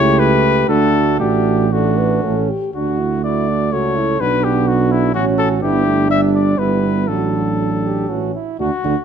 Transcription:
0.00 0.67 C#2 medium
0.00 0.68 A3 medium
0.00 0.41 E4 medium
0.00 0.70 G4 medium
0.00 0.20 C#5 loud
0.19 0.68 B4 medium
0.69 1.22 D2 medium
0.69 1.19 A3 medium
0.69 1.16 D4 medium
0.69 1.22 F#4 medium
0.69 1.19 A4 medium
1.20 2.24 A1 medium
1.20 1.71 A3 medium
1.20 1.72 D4 medium
1.20 1.66 F#4 medium
1.20 1.74 G4 medium
1.72 2.23 A3 medium
1.72 2.26 D4 soft
1.72 2.50 F#4 medium
1.72 1.99 A4 medium
1.98 2.23 B4 medium
2.23 2.49 A1 soft
2.23 2.36 A3 soft
2.23 2.50 C#4 soft
2.23 2.50 A4 medium
2.49 2.74 G4 soft
2.74 3.75 D2 soft
2.74 4.16 A3 soft
2.74 3.00 D4 soft
2.74 3.21 F#4 medium
2.74 3.26 F#4 soft
2.99 3.24 E4 soft
3.24 3.50 E4 soft
3.24 3.72 F#4 soft
3.24 3.74 D5 medium
3.48 3.72 D4 soft
3.73 4.20 C#2 soft
3.73 3.99 F#4 soft
3.73 4.22 A4 soft
3.73 4.22 C#5 medium
3.97 4.20 E4 medium
4.20 5.16 B1 medium
4.20 5.12 B3 medium
4.20 5.16 D4 medium
4.20 5.14 F#4 medium
4.20 4.45 B4 medium
4.44 4.69 G4 medium
4.68 4.93 F#4 medium
4.92 5.14 E4 medium
5.14 5.63 A1 medium
5.14 5.61 C#4 medium
5.14 5.64 C#4 medium
5.14 5.25 F#4 medium
5.14 5.61 F#4 medium
5.38 5.49 A4 medium
5.62 6.58 G1 medium
5.62 5.85 B3 medium
5.62 6.60 D4 medium
5.62 6.12 E4 medium
5.62 6.09 G4 medium
5.86 6.11 A3 medium
6.10 6.58 G3 medium
6.10 6.61 D4 soft
6.10 6.21 E5 medium
6.35 6.60 D5 medium
6.58 7.09 G1 soft
6.58 7.09 G3 soft
6.58 7.08 B3 soft
6.58 7.10 E4 soft
6.58 7.09 B4 medium
7.08 8.08 A1 soft
7.08 8.08 F#3 soft
7.08 8.10 D4 soft
7.08 7.54 F#4 soft
7.08 8.34 A4 medium
7.59 7.70 A4 soft
7.83 8.10 G4 soft
8.08 8.34 A1 soft
8.08 8.33 E3 soft
8.08 8.34 C#4 soft
8.08 8.34 F#4 soft
8.34 8.59 E4 soft
8.59 8.70 D2 medium
8.59 8.70 D3 medium
8.59 8.71 D4 medium
8.59 9.05 F#4 medium
8.59 8.71 F#4 medium
8.84 8.95 D2 medium
8.84 8.95 D3 soft
8.84 8.95 D4 soft
8.84 8.96 F#4 soft

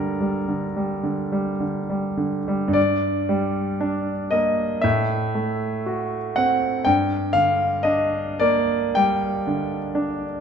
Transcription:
0.00 0.44 G2 soft
0.00 0.48 D3 soft
0.00 0.21 G3 soft
0.00 2.78 A4 medium
0.00 1.62 A#4 medium
0.21 0.65 G3 soft
0.48 0.93 D3 soft
0.77 1.22 G3 soft
1.03 1.50 D3 soft
1.32 1.79 G3 soft
1.60 2.07 D3 soft
1.90 2.37 G3 soft
2.17 2.64 D3 soft
2.48 2.76 G3 soft
2.68 4.75 G2 soft
2.73 4.31 D5 medium
3.29 4.11 G3 soft
3.80 4.63 D4 soft
4.31 4.84 A#3 soft
4.31 4.83 D#5 medium
4.82 6.82 A2 medium
4.82 6.36 E5 medium
5.35 6.17 A3 soft
5.86 6.67 F#4 soft
6.36 6.86 C4 soft
6.36 6.86 F#5 medium
6.85 8.93 G2 soft
6.85 7.33 G5 medium
7.33 8.16 D3 soft
7.33 7.83 F5 medium
7.83 8.75 D4 soft
7.83 8.39 D#5 medium
8.39 9.29 A#3 soft
8.39 8.97 D5 medium
8.95 9.77 G3 soft
8.95 10.40 G5 medium
9.47 10.24 D3 soft
9.95 10.40 D4 soft

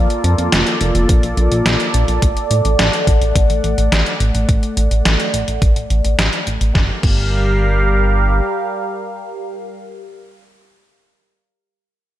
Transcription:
0.00 2.18 A#3 medium
0.00 2.18 F4 medium
0.00 6.71 A4 medium
0.00 6.71 D5 medium
0.10 closed hi-hat soft
0.24 0.35 F2 loud
0.24 closed hi-hat medium
0.38 0.49 F2 medium
0.38 closed hi-hat soft
0.52 0.63 F1 loud
0.52 snare loud
0.52 closed hi-hat loud
0.67 closed hi-hat soft
0.81 0.92 F1 loud
0.81 closed hi-hat medium
0.95 1.06 F1 medium
0.95 closed hi-hat soft
1.09 1.20 A#1 loud
1.09 kick loud
1.09 closed hi-hat medium
1.23 1.34 A#1 medium
1.23 closed hi-hat soft
1.37 1.48 A#1 loud
1.37 closed hi-hat soft
1.51 1.62 A#1 medium
1.51 closed hi-hat soft
1.65 1.77 A#1 loud
1.65 snare loud
1.65 closed hi-hat medium
1.80 closed hi-hat soft
1.94 2.05 A#1 medium
1.94 closed hi-hat medium
2.08 2.19 A#1 medium
2.08 closed hi-hat soft
2.22 2.33 A1 loud
2.22 6.71 A3 medium
2.22 6.71 F#5 medium
2.22 kick loud
2.22 closed hi-hat medium
2.37 closed hi-hat soft
2.51 2.62 A2 loud
2.51 closed hi-hat medium
2.65 2.76 A1 medium
2.65 closed hi-hat soft
2.79 2.90 A1 loud
2.79 snare loud
2.79 closed hi-hat medium
2.93 closed hi-hat soft
3.07 3.18 A1 medium
3.07 kick loud
3.07 closed hi-hat medium
3.21 3.32 A1 medium
3.21 closed hi-hat soft
3.36 3.47 A1 loud
3.36 kick loud
3.36 closed hi-hat medium
3.50 3.61 A1 medium
3.50 closed hi-hat soft
3.64 3.75 A1 medium
3.64 closed hi-hat soft
3.78 3.89 A1 medium
3.78 closed hi-hat soft
3.92 4.03 A1 medium
3.92 snare loud
3.92 closed hi-hat medium
4.06 closed hi-hat soft
4.20 4.31 A1 medium
4.20 closed hi-hat medium
4.34 4.45 A1 medium
4.34 closed hi-hat soft
4.49 4.60 A1 loud
4.49 kick loud
4.49 closed hi-hat medium
4.63 closed hi-hat soft
4.77 4.88 A1 medium
4.77 closed hi-hat medium
4.91 5.02 A1 medium
4.91 closed hi-hat soft
5.05 5.16 A1 medium
5.05 snare loud
5.05 closed hi-hat medium
5.20 closed hi-hat soft
5.33 5.45 A1 medium
5.33 closed hi-hat medium
5.48 5.59 A1 medium
5.48 closed hi-hat soft
5.62 5.73 A1 loud
5.62 kick loud
5.62 closed hi-hat medium
5.76 5.87 A1 medium
5.76 closed hi-hat soft
5.90 6.01 A1 medium
5.90 closed hi-hat soft
6.04 6.15 A1 medium
6.04 closed hi-hat soft
6.18 6.29 A1 loud
6.18 snare loud
6.18 closed hi-hat medium
6.33 closed hi-hat soft
6.47 6.58 A1 medium
6.47 closed hi-hat medium
6.61 6.72 A1 medium
6.61 closed hi-hat soft
6.75 6.91 G1 medium
6.75 9.78 G3 medium
6.75 9.78 G4 medium
6.75 9.78 A#4 medium
6.75 9.78 F5 medium
6.75 kick loud
6.75 snare medium
7.03 8.41 G1 loud
7.03 kick loud
7.03 crash medium

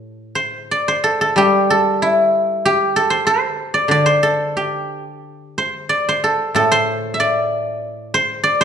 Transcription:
0.00 0.68 A2 soft
0.00 0.63 G4 medium
0.00 0.81 A4 medium
0.35 0.88 C5 medium
0.71 2.56 D5 medium
0.88 2.86 C5 medium
1.04 1.21 A4 medium
1.21 1.70 A4 medium
1.36 3.25 G3 medium
1.36 2.65 G4 medium
1.70 2.96 A4 medium
2.02 4.63 E4 medium
2.65 4.56 G4 medium
2.96 4.22 A4 medium
3.10 3.26 C5 medium
3.27 4.05 C5 medium
3.74 3.91 D5 medium
3.88 5.91 D3 soft
3.88 5.76 D5 medium
4.06 5.58 C5 medium
4.23 6.23 A4 medium
4.57 6.92 G4 soft
5.58 6.08 C5 medium
5.89 7.19 D5 medium
6.09 6.71 C5 medium
6.24 6.55 A4 medium
6.55 8.44 A2 soft
6.55 8.64 A4 medium
6.72 8.14 C5 medium
7.14 8.64 E5 medium
7.20 8.43 D5 medium
8.14 8.60 C5 medium
8.44 8.64 D5 medium
8.61 8.64 C5 medium

